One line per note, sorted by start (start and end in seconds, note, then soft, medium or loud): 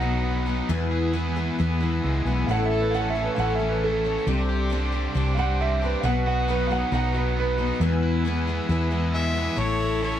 0.00 0.60 B1 loud
0.00 0.70 F#3 medium
0.00 0.48 B3 soft
0.00 0.46 D#4 medium
0.00 0.46 D#4 soft
0.00 0.26 F#4 medium
0.00 0.45 F#4 soft
0.00 2.45 B4 medium
0.00 0.68 F#5 medium
0.00 1.11 F#5 loud
0.00 0.68 D#6 medium
0.24 0.69 B3 medium
0.46 0.69 B3 medium
0.46 0.69 D#4 medium
0.46 0.69 F#4 medium
0.69 1.14 E2 medium
0.69 1.49 E2 medium
0.69 1.15 B2 medium
0.69 1.13 E3 medium
0.69 1.13 G#3 medium
0.69 1.14 B3 medium
0.69 1.15 G#4 medium
0.69 2.47 G#5 medium
0.69 4.24 E6 medium
0.91 2.04 G#4 medium
1.13 1.37 E3 medium
1.13 1.37 G#3 medium
1.13 1.36 B3 medium
1.13 1.35 G#4 medium
1.36 1.58 E3 medium
1.36 1.58 G#3 medium
1.36 1.59 B3 medium
1.36 1.59 G#4 medium
1.59 2.00 E2 loud
1.59 1.82 E3 medium
1.59 1.82 G#3 medium
1.59 1.80 B3 medium
1.59 1.79 G#4 medium
1.80 2.27 E3 soft
1.80 2.27 G#3 medium
1.80 2.26 B3 medium
1.80 2.25 G#4 medium
2.04 2.24 C#2 medium
2.04 2.49 G#3 medium
2.25 2.46 B1 medium
2.25 2.48 E3 soft
2.25 2.49 G#3 medium
2.25 2.49 B3 medium
2.25 2.49 G#4 medium
2.46 3.28 A1 medium
2.46 2.93 A2 medium
2.46 2.93 E3 medium
2.46 2.93 A3 medium
2.46 4.25 C#5 medium
2.46 2.49 F5 medium
2.46 4.25 A5 medium
2.50 2.94 C#4 medium
2.50 2.94 A4 medium
2.50 2.64 F#5 loud
2.65 2.79 E5 medium
2.71 3.82 A4 medium
2.81 2.94 B4 medium
2.91 3.16 E3 medium
2.91 3.16 A3 medium
2.91 2.93 F5 medium
2.95 3.16 C#4 medium
2.95 3.14 A4 medium
2.95 3.09 F#5 loud
3.10 3.23 E5 medium
3.15 3.60 E3 medium
3.15 3.37 A3 soft
3.15 3.38 C#4 medium
3.15 3.38 A4 medium
3.25 3.38 B4 medium
3.35 4.17 A1 medium
3.35 3.59 E3 medium
3.35 3.60 A3 medium
3.35 3.37 F5 medium
3.39 3.59 C#4 medium
3.39 3.58 A4 medium
3.39 3.53 F#5 loud
3.55 3.68 E5 medium
3.59 4.27 E3 medium
3.59 4.05 A3 soft
3.59 4.05 C#4 soft
3.59 4.04 A4 soft
3.69 3.83 B4 medium
3.84 4.27 A3 medium
3.84 5.12 A4 medium
4.05 4.27 A3 soft
4.05 4.27 C#4 medium
4.05 4.27 A4 medium
4.27 5.06 C2 loud
4.27 4.71 C3 medium
4.27 4.69 G3 medium
4.27 4.70 C4 medium
4.27 4.71 D4 medium
4.27 4.72 G4 medium
4.27 6.03 C5 medium
4.27 6.03 G5 medium
4.27 6.03 D6 medium
4.49 5.60 G4 medium
4.70 4.93 G3 medium
4.70 4.93 C4 medium
4.70 4.92 D4 medium
4.70 4.91 G4 medium
4.92 5.36 G3 medium
4.92 5.14 C4 medium
4.92 5.15 D4 medium
4.92 5.15 G4 medium
5.14 5.94 C2 loud
5.14 5.37 G3 medium
5.14 5.37 C4 medium
5.14 5.37 D4 medium
5.14 5.36 G4 medium
5.35 6.04 G3 medium
5.35 5.82 D4 soft
5.35 5.81 G4 soft
5.35 5.37 F5 medium
5.39 5.83 C4 soft
5.39 5.60 F#5 loud
5.60 6.04 C4 medium
5.60 5.82 E5 loud
5.82 6.03 C4 soft
5.82 6.04 D4 soft
5.82 6.04 G4 medium
5.82 6.04 B4 medium
6.01 6.83 B1 loud
6.01 6.48 B2 medium
6.01 6.47 F#3 medium
6.01 6.49 B3 medium
6.01 7.78 B4 medium
6.01 6.04 F5 medium
6.01 7.79 F#5 medium
6.01 7.79 D#6 medium
6.05 6.49 D#4 medium
6.05 6.49 F#4 medium
6.05 6.26 F#5 loud
6.26 7.37 F#4 medium
6.26 6.48 F#5 medium
6.48 6.70 F#3 medium
6.48 6.71 B3 medium
6.48 6.70 D#4 medium
6.48 6.69 F#4 medium
6.48 6.71 B4 loud
6.67 7.12 F#3 medium
6.67 6.93 D#4 medium
6.67 6.92 F#4 medium
6.67 6.70 F5 medium
6.72 6.92 B3 soft
6.72 6.92 F#5 loud
6.92 7.71 B1 loud
6.92 7.14 F#3 medium
6.92 7.15 B3 medium
6.92 7.14 D#4 medium
6.92 7.13 F#4 medium
6.92 7.15 F#5 loud
7.13 7.80 F#3 medium
7.13 7.59 B3 soft
7.13 7.58 D#4 soft
7.13 7.57 F#4 soft
7.13 7.37 B4 medium
7.36 7.80 B3 medium
7.36 8.67 B4 loud
7.58 7.81 B3 soft
7.58 7.81 D#4 medium
7.58 7.80 F#4 medium
7.80 8.59 E2 loud
7.80 8.25 E2 medium
7.80 8.25 B2 medium
7.80 8.24 E3 medium
7.80 8.25 G#3 medium
7.80 8.26 B3 medium
7.80 8.26 G#4 medium
7.80 9.56 B4 medium
7.80 9.56 G#5 medium
7.80 9.56 E6 medium
8.02 9.13 E4 medium
8.25 8.47 E3 medium
8.25 8.48 G#3 medium
8.25 8.47 B3 medium
8.25 8.46 G#4 medium
8.47 8.68 E3 soft
8.47 8.69 G#3 medium
8.47 8.70 B3 medium
8.47 8.69 G#4 medium
8.69 9.48 E2 loud
8.69 8.91 E3 medium
8.69 8.91 G#3 medium
8.69 8.91 B3 medium
8.69 8.90 G#4 medium
8.91 9.36 E3 soft
8.91 9.36 G#3 medium
8.91 9.34 B3 medium
8.91 9.34 G#4 medium
9.13 9.58 G#3 medium
9.13 9.60 E5 loud
9.35 9.56 E3 soft
9.35 9.57 G#3 medium
9.35 9.57 B3 soft
9.35 9.58 G#4 medium
9.56 10.20 A1 medium
9.56 10.01 A2 medium
9.56 10.00 E3 medium
9.56 10.01 A3 medium
9.56 10.02 C#4 medium
9.56 10.02 A4 medium
9.56 10.20 C#5 medium
9.56 10.02 C#5 loud
9.56 10.20 A5 medium
9.56 10.20 E6 medium
9.80 10.20 E4 medium
10.01 10.20 E3 medium
10.01 10.20 A3 medium
10.01 10.20 C#4 medium
10.01 10.20 A4 medium
10.01 10.20 C#5 medium